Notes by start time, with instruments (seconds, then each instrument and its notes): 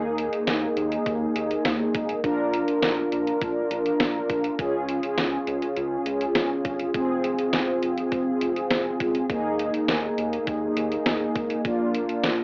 Already playing: analog synth bass D#2, analog polysynth A#3 D#4 G#4
0.18 closed hi-hat
0.33 closed hi-hat
0.47 analog synth bass D#2, snare, closed hi-hat
0.77 analog synth bass D#2, closed hi-hat
0.92 closed hi-hat
1.06 analog synth bass D#2, kick, closed hi-hat
1.36 analog synth bass D#2, closed hi-hat
1.51 closed hi-hat
1.65 analog synth bass D#2, snare, closed hi-hat
1.94 analog synth bass G#1, kick, closed hi-hat
2.09 closed hi-hat
2.24 analog synth bass A#1, analog polysynth D4 F4 A#4, kick, closed hi-hat
2.53 closed hi-hat
2.68 closed hi-hat
2.82 analog synth bass A#1, snare, closed hi-hat
3.12 analog synth bass A#1, closed hi-hat
3.27 closed hi-hat
3.41 analog synth bass A#1, kick, closed hi-hat
3.71 analog synth bass A#1, closed hi-hat
3.86 closed hi-hat
4.00 analog synth bass A#1, snare, closed hi-hat
4.30 analog synth bass A#1, kick, closed hi-hat
4.44 closed hi-hat
4.59 analog synth bass C#2, analog polysynth C#4 F4 G#4, kick, closed hi-hat
4.89 closed hi-hat
5.03 closed hi-hat
5.18 analog synth bass C#2, snare, closed hi-hat
5.47 analog synth bass C#2, closed hi-hat
5.62 closed hi-hat
5.77 analog synth bass C#2, closed hi-hat
6.06 analog synth bass C#2, closed hi-hat
6.21 closed hi-hat
6.35 analog synth bass C#2, snare, closed hi-hat
6.65 analog synth bass G1, kick, closed hi-hat
6.80 closed hi-hat
6.94 analog synth bass F1, analog polysynth C4 F4 G#4, kick, closed hi-hat
7.24 closed hi-hat
7.39 closed hi-hat
7.53 analog synth bass F1, snare, closed hi-hat
7.83 analog synth bass F1, closed hi-hat
7.98 closed hi-hat
8.12 analog synth bass F1, kick, closed hi-hat
8.41 analog synth bass F1, closed hi-hat
8.56 closed hi-hat
8.71 analog synth bass F1, snare, closed hi-hat
9.00 analog synth bass C#2, kick, closed hi-hat
9.15 closed hi-hat
9.30 analog synth bass D#2, analog polysynth A#3 D#4 G#4, kick, closed hi-hat
9.59 closed hi-hat
9.74 closed hi-hat
9.88 analog synth bass D#2, snare, closed hi-hat
10.18 analog synth bass D#2, closed hi-hat
10.33 closed hi-hat
10.47 analog synth bass D#2, kick, closed hi-hat
10.77 analog synth bass D#2, closed hi-hat
10.92 closed hi-hat
11.06 analog synth bass D#2, snare, closed hi-hat
11.36 analog synth bass G#1, kick, closed hi-hat
11.50 closed hi-hat
11.65 analog synth bass A#1, analog polysynth A#3 D4 F4, kick, closed hi-hat
11.95 closed hi-hat
12.09 closed hi-hat
12.24 analog synth bass A#1, snare, closed hi-hat